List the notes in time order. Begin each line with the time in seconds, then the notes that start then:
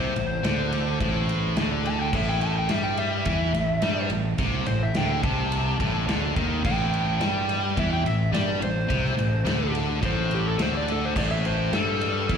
Already playing: C2 C3 C5
0.15 A1 A2, ride
0.43 D2 D3, snare, ride
0.72 ride
1.00 A1 A2, kick, ride
1.29 ride
1.56 D2 D3, snare, ride
1.85 A5, ride
2.02 G5
2.13 A1 A2 E5, kick, crash
2.29 G5
2.41 A5, ride
2.58 G5
2.68 G2 G3 E5, snare, ride
2.83 G5
2.97 E5, ride
3.25 E2 E3, kick, ride
3.54 A1 A2, snare, ride
3.82 G2 G3, snare, ride
4.10 A1 A2, ride
4.38 C2 C3, kick, ride
4.66 A1 A2 C5, ride
4.83 E5
4.94 D2 D3 G5, snare, ride
5.23 C2 C3 A5, kick, ride
5.52 ride
5.79 A1 A2, kick, ride
6.07 D2 D3, snare, ride
6.36 D#2 D#3, kick, ride
6.64 A1 A2 G5, kick, crash
6.93 ride
7.20 G2 G3, snare, ride
7.49 ride
7.76 E2 E3 E5, kick, ride
7.93 G5
8.05 A1 A2 E5, ride
8.32 G2 G3 D5, snare, ride
8.60 A1 A2 C5, ride
8.89 C2 C3, kick, ride
9.05 snare
9.17 A1 A2, ride
9.45 D2 D3, snare, ride
9.75 ride
10.01 A1 A2, kick, ride
10.05 C5
10.31 G4, ride
10.47 A4
10.58 D2 D3, snare, ride
10.62 C5
10.77 D5
10.88 A4, ride
11.05 C5
11.15 A1 A2 D5, kick, crash
11.31 E5
11.45 C5, ride
11.72 G2 G3 A4, snare, ride
12.01 ride
12.29 E2 E3, kick, ride